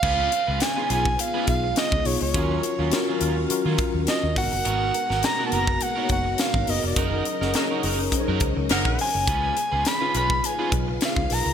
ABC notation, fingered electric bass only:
X:1
M:4/4
L:1/16
Q:"Swing 16ths" 1/4=104
K:Dbmix
V:1 name="Fingered electric bass" clef=bass
D,,2 z D,, z2 C,,2 z2 C,,2 z D,, C,, D,, | E,,2 z E,, z2 E,,2 z E, z E,, z E,, A,,, G,,, | A,,,2 z A,,, z2 G,,,2 z2 G,,,2 z A,,, G,,, F,,, | G,,,2 z G,,, z2 G,,,2 z G,, D,, D,, G,,, B,,, z G,,, |
D,,2 z D,, z2 C,,2 z2 C,,2 z D,, C,, D,, |]